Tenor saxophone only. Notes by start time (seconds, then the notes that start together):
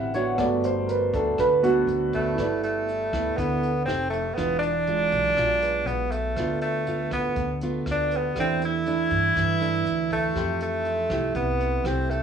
2.15 A3
2.64 A3
3.37 B3
3.85 C4
4.10 A3
4.35 B3
4.59 D4
5.87 B3
6.11 A3
6.62 A3
7.13 B3
7.91 D4
8.16 B3
8.40 C4
8.65 E4
10.13 A3
10.63 A3
11.35 B3
11.86 C4
12.10 A3